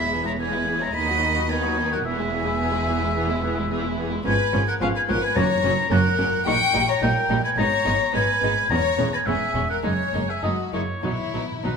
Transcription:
Already playing: E1 E2 E4 E5 B5
0.00 G#3
0.12 E3 B3 G#4
0.25 G#3 E4 C#5 A#5
0.38 E3 B3 G#4 B4 G#5
0.53 G#3 E4
0.67 E3 B3 G#4
0.81 G#3 E4 C#5 A#5
0.93 D#2 D#3 B3 D#4 D#5 B5
1.08 F#3 D#4 F#4
1.21 D#3 B3 D#4
1.36 F#3 D#4 F#4
1.49 D#3 B3 D#4 B4 G#5
1.64 F#3 D#4 F#4
1.78 D#3 B3 D#4
1.92 F#3 D#4 F#4 A#4 F#5
2.05 E1 E2 E3 B3 G#4 E5
2.19 G#3 E4
2.32 E3 B3 G#4
2.46 G#3 E4
2.59 E3 B3 G#4
2.73 G#3 E4
2.87 E3 B3 G#4
3.01 G#3 E4
3.14 E3 B3 G#4
3.28 G#3 E4
3.42 E3 B3 G#4
3.56 G#3 E4
3.70 E3 B3 G#4
3.83 G#3 E4
3.97 E3 B3 G#4
4.11 G#3 E4
4.24 G#1 G#2 F3 B3 C#4 B4 G#5
4.52 G#1 G#2 F3 B3 C#4
4.68 A#4 F#5
4.80 G#1 G#2 F3 B3 C#4 G#4 F5
4.96 B4 G#5
5.08 G#1 G#2 F3 B3 C#4 A#4 F#5
5.22 B4 G#5
5.36 F#1 F#2 F#3 A#3 C#4 C#5 A#5
5.63 F#1 F#2 F#3 A#3 C#4
5.91 F#1 F#2 F#3 A#3 C#4 A#4 F#5
6.18 F#1 F#2 F#3 A#3 C#4
6.46 A#1 A#2 G3 A#3 D#4 G5 C#6
6.74 A#1 A#2 G3 A#3 D#4
6.89 C#5 A#5
7.02 A#1 A#2 G3 A#3 D#4 A#4 G5
7.29 A#1 A#2 G3 A#3 D#4
7.44 B4 G#5
7.57 G#1 G#2 G#3 B3 D#4 C#5 A#5
7.86 G#1 G#2 G#3 B3 D#4
8.14 G#1 G#2 G#3 B3 D#4 B4 G#5
8.43 G#1 G#2 G#3 B3 D#4
8.70 E1 E2 G#3 B3 C#4 C#5 A#5
8.98 E1 E2 G#3 B3 C#4
9.13 B4 G#5
9.26 E1 E2 G#3 B3 C#4 G#4 E5
9.54 E1 E2 G#3 B3 C#4
9.70 A#4 F#5
9.84 F#1 F#2 G#3 A#3 D#4 C#5 G#5
10.14 F#1 F#2 G#3 A#3 D#4
10.29 G#4 E5
10.42 F#1 F#2 G#3 A#3 D#4 F#4 D#5
10.73 F#1 F#2 G#3 A#3 D#4 E4 C#5
11.03 B1 B2 F#3 B3 D#4 E4 C#5
11.11 B2
11.19 B2
11.28 B2
11.33 B1 B2 F#3 B3 D#4
11.44 B2
11.52 B2
11.59 B2
11.64 B1 B2 F#3 B3 D#4 B4
11.68 B2

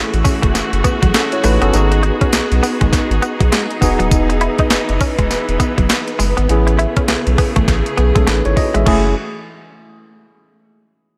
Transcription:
Already playing: E3 A3 C#4 E4 F#4 G#4
0.14 A1, closed hi-hat
0.24 C#4, kick, open hi-hat, tambourine
0.42 F#1 A3, kick, closed hi-hat
0.54 F#1, muted clean electric guitar stroke, snare, closed hi-hat, tambourine
0.73 F#1, closed hi-hat
0.84 B3, kick, closed hi-hat, tambourine
1.02 A1 F#3, kick, closed hi-hat
1.14 C#4 A4, muted clean electric guitar stroke, snare, closed hi-hat, tambourine
1.32 E4 C#5, closed hi-hat
1.44 A1 A3 D#4 B4, open hi-hat, tambourine
1.62 G1 B3 C#4 A4, closed hi-hat
1.73 G#1 B3 D#4 F#4 G#4, closed hi-hat, tambourine
1.92 muted clean electric guitar stroke, closed hi-hat
2.03 D#4, closed hi-hat
2.21 C#4, kick, closed hi-hat
2.33 B1, muted clean electric guitar stroke, snare, closed hi-hat, tambourine
2.52 B1, closed hi-hat
2.63 B3, open hi-hat, tambourine
2.81 G#1 G#3, kick, closed hi-hat
2.92 G#1, muted clean electric guitar stroke, kick, snare, closed hi-hat, tambourine
3.11 G#1, closed hi-hat
3.22 B3, closed hi-hat, tambourine
3.40 B1 F#3, kick, closed hi-hat
3.52 G#3, snare, closed hi-hat, tambourine
3.71 closed hi-hat
3.81 E1 E3 B3 D#4 F#4 G#4, muted clean electric guitar stroke, kick, open hi-hat, tambourine
3.99 D#1 F#3, closed hi-hat
4.11 E1, kick, closed hi-hat, tambourine
4.29 muted clean electric guitar stroke, closed hi-hat
4.41 E4, closed hi-hat
4.58 D#4, kick, closed hi-hat
4.70 F#1, muted clean electric guitar stroke, snare, closed hi-hat, tambourine
4.89 F#1, closed hi-hat
5.01 C#4, kick, open hi-hat, tambourine
5.19 E1 G#3, kick, closed hi-hat
5.31 E1, muted clean electric guitar stroke, snare, closed hi-hat, tambourine
5.49 E1, closed hi-hat
5.60 B3, kick, closed hi-hat, tambourine
5.78 F#1 F#3, kick, closed hi-hat
5.89 muted clean electric guitar stroke, snare, closed hi-hat, tambourine
6.08 closed hi-hat
6.19 F#1 G#3, open hi-hat, tambourine
6.37 G#1 B3, closed hi-hat
6.49 A1 C#3 A3 B3 C#4 E4 G#4, closed hi-hat
6.67 muted clean electric guitar stroke, closed hi-hat
6.79 E4, closed hi-hat
6.96 C#4, kick, closed hi-hat
7.08 B1, muted clean electric guitar stroke, snare, closed hi-hat
7.27 B1, closed hi-hat
7.38 B3, kick, open hi-hat
7.56 A1 A3, kick, closed hi-hat
7.68 A1, muted clean electric guitar stroke, kick, snare, closed hi-hat
7.86 closed hi-hat
7.97 B1 B3 G#4, closed hi-hat
8.15 B1 G#3 C#4 A4, kick, closed hi-hat
8.27 A1 A3 D#4 B4, snare, closed hi-hat
8.45 G#1 E4 C#5, closed hi-hat
8.56 F#4 D#5, muted clean electric guitar stroke, kick, open hi-hat
8.74 A1 G#3 G#4 E5, closed hi-hat
8.86 F#1 E3 A3 C#4 E4 F#4 G#4, kick, crash

